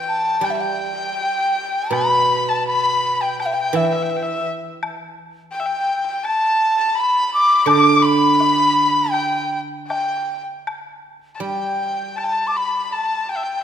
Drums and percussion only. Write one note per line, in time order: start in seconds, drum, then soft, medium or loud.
0.44 high woodblock soft
1.93 high woodblock medium
3.40 high woodblock medium
4.83 high woodblock medium
6.25 high woodblock medium
7.67 high woodblock medium
8.40 low woodblock medium
9.14 high woodblock medium
9.90 high woodblock medium
9.90 low woodblock medium
10.67 high woodblock medium
12.18 high woodblock soft